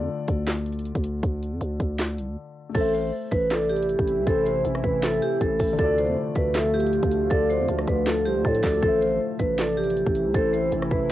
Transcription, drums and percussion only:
0.28 kick, closed hi-hat
0.47 snare, clap, closed hi-hat
0.66 closed hi-hat
0.72 closed hi-hat
0.79 closed hi-hat
0.85 closed hi-hat
0.95 kick
1.04 closed hi-hat
1.23 kick, closed hi-hat
1.43 closed hi-hat
1.61 closed hi-hat
1.80 kick
1.99 snare, clap, closed hi-hat
2.18 closed hi-hat
2.75 kick, closed hi-hat, crash
2.95 closed hi-hat
3.32 kick, closed hi-hat
3.51 snare, clap, closed hi-hat
3.70 closed hi-hat
3.76 closed hi-hat
3.83 closed hi-hat
3.89 closed hi-hat
3.99 kick
4.08 closed hi-hat
4.27 kick, closed hi-hat
4.46 closed hi-hat
4.65 closed hi-hat
4.75 cross-stick
4.84 kick
5.03 snare, clap, closed hi-hat
5.22 closed hi-hat
5.41 kick, closed hi-hat
5.59 kick, open hi-hat
5.79 kick, closed hi-hat
5.98 closed hi-hat
6.35 kick, closed hi-hat
6.54 snare, clap, closed hi-hat
6.74 closed hi-hat
6.80 closed hi-hat
6.86 closed hi-hat
6.93 closed hi-hat
7.03 kick
7.11 closed hi-hat
7.31 kick, closed hi-hat
7.50 closed hi-hat
7.68 closed hi-hat
7.79 cross-stick
7.88 kick
8.06 snare, clap, closed hi-hat
8.26 closed hi-hat
8.45 kick, closed hi-hat
8.55 closed hi-hat
8.63 kick, snare, clap, open hi-hat
8.83 kick, closed hi-hat
9.02 closed hi-hat
9.39 kick, closed hi-hat
9.58 snare, clap, closed hi-hat
9.78 closed hi-hat
9.84 closed hi-hat
9.90 closed hi-hat
9.97 closed hi-hat
10.07 kick
10.15 closed hi-hat
10.34 kick, closed hi-hat
10.54 closed hi-hat
10.72 closed hi-hat
10.82 cross-stick
10.91 kick

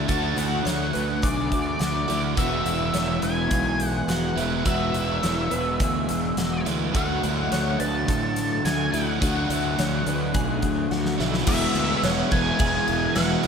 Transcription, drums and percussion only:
0.09 kick, closed hi-hat
0.38 closed hi-hat
0.67 snare, closed hi-hat
0.95 closed hi-hat
1.23 kick, closed hi-hat
1.52 kick, closed hi-hat
1.81 snare, closed hi-hat
2.10 snare, closed hi-hat
2.37 kick, closed hi-hat
2.66 closed hi-hat
2.94 snare, closed hi-hat
3.22 closed hi-hat
3.51 kick, closed hi-hat
3.80 closed hi-hat
4.09 snare, closed hi-hat
4.38 snare, closed hi-hat
4.66 kick, closed hi-hat
4.94 closed hi-hat
5.23 snare, closed hi-hat
5.51 closed hi-hat
5.80 kick, closed hi-hat
6.09 snare, closed hi-hat
6.37 snare, closed hi-hat
6.66 snare, closed hi-hat
6.95 kick, closed hi-hat
7.24 closed hi-hat
7.52 snare, closed hi-hat
7.80 closed hi-hat
8.08 kick, closed hi-hat
8.36 snare, closed hi-hat
8.65 snare, closed hi-hat
8.94 snare, closed hi-hat
9.22 kick, closed hi-hat
9.50 closed hi-hat
9.79 snare, closed hi-hat
10.07 closed hi-hat
10.34 kick, closed hi-hat
10.62 kick, closed hi-hat
10.92 snare
11.05 snare
11.20 snare
11.34 snare
11.47 kick, crash
11.75 crash
12.03 snare, crash
12.32 kick, crash
12.60 kick, crash
12.88 crash
13.16 snare, crash
13.44 crash

